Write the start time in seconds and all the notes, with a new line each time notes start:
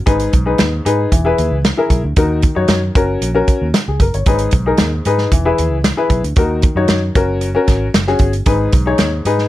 0.06 G#1 G#2 D#4 G#4 B4, kick, closed hi-hat
0.19 closed hi-hat
0.33 B1, kick, closed hi-hat
0.46 D#4 G#4 B4
0.58 D#2, snare, closed hi-hat
0.85 G#2 D#4 G#4 B4, closed hi-hat
1.12 E1 E3, kick, closed hi-hat
1.25 E4 G#4 B4
1.38 D#2, closed hi-hat
1.51 C#2
1.65 snare, closed hi-hat
1.77 E4 G#4 A#4
1.90 B1, kick, closed hi-hat
2.04 D2
2.16 D#2 D#3 D#4 F#4 A#4, kick, closed hi-hat
2.42 kick, closed hi-hat
2.55 F#2 D#4 F#4 C#5
2.68 F#2, snare, closed hi-hat
2.95 F#1 C#4 F#4 A#4, kick, closed hi-hat
3.21 A#1, closed hi-hat
3.35 C#4 F#4 A#4
3.48 kick, closed hi-hat
3.62 D#2
3.74 snare, closed hi-hat
3.88 C#2 G#4
4.00 F#1 A#4, kick, closed hi-hat
4.14 G1 C#5, closed hi-hat
4.26 G#1 G#2 D#4 G#4 B4, kick, closed hi-hat
4.38 closed hi-hat
4.51 B1, kick, closed hi-hat
4.66 D#4 G#4 A#4
4.77 D#2, snare, closed hi-hat
5.05 G#2 D#4 G#4 B4, closed hi-hat
5.18 snare
5.31 E1 E3, kick, closed hi-hat
5.45 E4 G#4 B4
5.58 D#2, closed hi-hat
5.71 C#2
5.84 snare, closed hi-hat
5.97 E4 G#4 B4
6.10 B1, kick, closed hi-hat
6.23 D2, closed hi-hat
6.36 D#2 D#3 D#4 F#4 A#4, kick, closed hi-hat
6.62 kick, closed hi-hat
6.75 F#2 D#4 F#4 C#5
6.88 F#2, snare, closed hi-hat
7.15 F#1 C#4 F#4 A#4, kick, closed hi-hat
7.41 closed hi-hat
7.55 C#4 F#4 A#4
7.67 G#1, kick, snare, closed hi-hat
7.94 F#1, snare, closed hi-hat
8.07 C#4 F#4 G#4, snare
8.19 G1, kick, closed hi-hat
8.33 closed hi-hat
8.46 G#1 G#2 D#4 G#4 B4, kick, closed hi-hat
8.72 B1, kick, closed hi-hat
8.86 D#4 G#4 C#5
8.98 D#2, snare, closed hi-hat
9.25 G#2 D#4 G#4 B4, closed hi-hat
9.38 snare